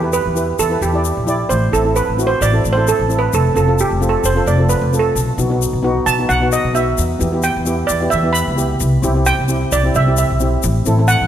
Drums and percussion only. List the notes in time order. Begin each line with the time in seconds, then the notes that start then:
0.13 shaker
0.36 shaker
0.59 shaker
0.82 shaker
1.05 shaker
1.28 shaker
1.51 shaker
1.74 shaker
1.96 shaker
2.19 shaker
2.42 shaker
2.65 shaker
2.88 shaker
3.10 shaker
3.33 shaker
3.56 shaker
3.79 shaker
4.02 shaker
4.24 shaker
4.47 shaker
4.70 shaker
4.93 shaker
5.16 shaker
5.39 shaker
5.62 shaker
6.07 shaker
6.30 shaker
6.52 shaker
6.75 shaker
6.98 shaker
7.21 shaker
7.43 shaker
7.66 shaker
7.89 shaker
8.12 shaker
8.35 shaker
8.58 shaker
8.80 shaker
9.03 shaker
9.26 shaker
9.48 shaker
9.72 shaker
9.95 shaker
10.17 shaker
10.40 shaker
10.63 shaker
10.86 shaker
11.08 shaker